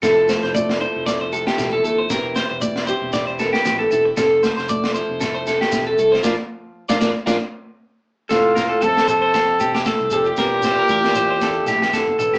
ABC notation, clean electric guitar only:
X:1
M:4/4
L:1/16
Q:"Swing 16ths" 1/4=116
K:F
V:1 name="Clean electric guitar"
A2 c c d2 c2 d c A G2 A A c | B2 c c d2 c2 d c A G2 A A z | A2 c c d2 c2 A c A G2 A A c | [FBd] z4 [FBd] [FBd] z [FBd] z6 z |
A2 B A A2 c c A2 G G A2 A G | B2 c B B2 c c A2 G G A2 A G |]